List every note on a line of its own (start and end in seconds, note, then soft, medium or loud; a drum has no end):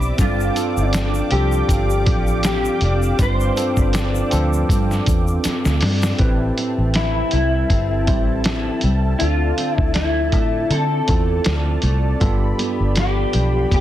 0.00 0.11 B1 medium
0.00 0.27 E3 medium
0.00 0.18 C4 medium
0.00 0.19 D4 medium
0.00 0.20 E4 medium
0.00 0.20 G4 medium
0.00 6.16 D5 medium
0.00 0.16 E5 medium
0.00 0.16 B5 medium
0.00 6.16 D6 medium
0.00 shaker soft
0.18 0.49 G1 loud
0.18 3.18 G2 medium
0.18 0.43 C4 medium
0.18 0.43 D4 medium
0.18 0.93 D4 medium
0.18 0.44 F4 medium
0.18 0.91 F4 medium
0.18 0.44 A4 medium
0.18 6.16 F5 medium
0.18 6.16 G5 medium
0.18 kick loud
0.18 closed hi-hat medium
0.18 shaker medium
0.40 shaker soft
0.55 1.03 C4 medium
0.55 1.68 C4 medium
0.55 1.03 D4 medium
0.55 1.04 F4 medium
0.55 1.04 A4 medium
0.55 closed hi-hat medium
0.55 shaker soft
0.77 1.20 G1 medium
0.77 shaker soft
0.93 2.81 D4 medium
0.93 snare loud
0.93 closed hi-hat medium
0.93 shaker medium
1.14 shaker soft
1.30 1.61 C2 medium
1.30 2.04 F3 medium
1.30 2.26 C4 medium
1.30 2.26 D4 medium
1.30 2.27 F4 medium
1.30 2.44 G4 medium
1.30 2.27 A4 medium
1.30 closed hi-hat medium
1.52 shaker soft
1.69 2.07 G1 medium
1.69 2.44 C4 medium
1.69 kick medium
1.69 closed hi-hat medium
1.69 shaker medium
1.90 shaker soft
2.06 2.67 A1 medium
2.06 4.32 F3 medium
2.06 kick loud
2.06 closed hi-hat medium
2.27 shaker soft
2.43 3.56 C4 medium
2.43 3.22 G4 medium
2.43 snare loud
2.43 closed hi-hat medium
2.43 shaker medium
2.65 shaker soft
2.81 3.12 F1 medium
2.81 3.18 D4 medium
2.81 closed hi-hat medium
3.02 shaker soft
3.18 3.49 G1 loud
3.18 6.20 G2 medium
3.18 3.44 C4 medium
3.18 3.44 D4 medium
3.18 3.94 D4 medium
3.18 3.44 F4 medium
3.18 3.45 B4 medium
3.18 5.42 C5 loud
3.18 kick loud
3.18 closed hi-hat medium
3.18 shaker medium
3.40 shaker soft
3.55 4.04 C4 medium
3.55 4.70 C4 medium
3.55 4.04 D4 medium
3.55 4.04 F4 medium
3.55 4.05 A4 medium
3.55 closed hi-hat medium
3.55 shaker soft
3.77 4.21 G1 medium
3.77 kick medium
3.77 shaker soft
3.93 5.82 D4 medium
3.93 snare loud
3.93 closed hi-hat medium
3.93 shaker medium
4.15 shaker soft
4.30 4.62 D2 medium
4.30 5.07 F3 medium
4.30 5.26 C4 medium
4.30 5.27 D4 medium
4.30 5.27 F4 medium
4.30 5.27 A4 medium
4.30 closed hi-hat medium
4.30 shaker soft
4.53 shaker soft
4.69 4.99 G2 loud
4.69 5.45 C4 medium
4.69 kick medium
4.69 closed hi-hat medium
4.69 shaker medium
4.91 snare soft
4.91 shaker soft
5.06 5.37 E2 medium
5.06 kick loud
5.06 closed hi-hat medium
5.06 shaker soft
5.27 shaker soft
5.44 6.58 C4 medium
5.44 muted fingered electric bass stroke soft
5.44 snare medium
5.44 closed hi-hat medium
5.44 shaker medium
5.65 5.79 D2 medium
5.65 snare medium
5.65 shaker soft
5.81 6.12 G2 medium
5.81 6.29 D4 medium
5.81 snare medium
5.81 open hi-hat soft
6.03 snare medium
6.03 shaker soft
6.18 6.50 A1 loud
6.18 9.21 A2 medium
6.18 7.15 C4 medium
6.18 7.15 E4 medium
6.18 7.15 G4 medium
6.18 12.17 A4 medium
6.18 7.16 B4 loud
6.18 9.17 E5 medium
6.18 9.17 G5 medium
6.18 12.17 A5 medium
6.18 kick loud
6.18 closed hi-hat medium
6.58 7.70 C4 medium
6.58 closed hi-hat medium
6.78 7.22 A1 medium
6.94 7.31 E4 medium
6.94 8.45 E4 medium
6.94 snare loud
6.94 closed hi-hat medium
7.31 7.63 C2 medium
7.31 8.07 G3 medium
7.31 9.17 E4 medium
7.31 closed hi-hat medium
7.70 8.08 G1 medium
7.70 9.58 C4 medium
7.70 kick medium
7.70 closed hi-hat medium
8.06 8.68 A1 medium
8.06 8.82 G3 medium
8.06 8.77 C4 medium
8.06 8.78 E4 medium
8.06 8.78 G4 medium
8.06 8.79 C5 medium
8.06 kick medium
8.06 closed hi-hat medium
8.44 9.30 E4 medium
8.44 snare loud
8.44 closed hi-hat medium
8.81 9.13 C2 medium
8.81 9.29 G3 medium
8.81 closed hi-hat medium
9.19 9.51 D2 medium
9.19 12.71 D3 medium
9.19 10.15 C4 medium
9.19 9.73 F4 medium
9.19 10.16 F4 medium
9.19 10.16 A4 medium
9.19 13.80 D5 medium
9.19 10.15 E5 medium
9.19 closed hi-hat medium
9.58 10.71 C4 medium
9.58 closed hi-hat medium
9.73 9.94 E4 medium
9.78 10.33 D2 medium
9.78 kick medium
9.94 10.73 E4 medium
9.94 snare loud
9.94 closed hi-hat medium
10.32 10.63 A2 medium
10.32 11.08 A3 medium
10.32 kick medium
10.32 closed hi-hat medium
10.70 11.01 D3 loud
10.70 12.30 C4 medium
10.70 11.80 A4 medium
10.70 closed hi-hat medium
11.08 11.39 E2 medium
11.08 11.82 A3 medium
11.08 11.79 C4 medium
11.08 11.79 E4 medium
11.08 11.80 F4 medium
11.08 11.80 A4 medium
11.08 kick medium
11.08 closed hi-hat medium
11.44 11.76 D2 medium
11.44 12.62 F4 medium
11.44 snare loud
11.44 closed hi-hat medium
11.82 12.13 C2 medium
11.82 12.29 A3 medium
11.82 closed hi-hat medium
12.20 12.51 G1 loud
12.20 13.80 G2 medium
12.20 13.16 B3 medium
12.20 13.16 D4 medium
12.20 13.17 F4 medium
12.20 13.80 G4 medium
12.20 13.17 A4 medium
12.20 13.80 B5 medium
12.20 kick loud
12.20 closed hi-hat medium
12.59 13.71 B3 medium
12.59 closed hi-hat medium
12.80 13.23 G1 medium
12.95 13.80 D4 medium
12.95 snare loud
12.95 closed hi-hat medium
12.99 13.73 G4 medium
13.33 13.64 B1 medium
13.33 13.80 F3 medium
13.33 closed hi-hat medium
13.71 13.80 F1 loud
13.71 13.80 B3 medium
13.71 13.80 G4 medium
13.71 kick medium
13.71 closed hi-hat medium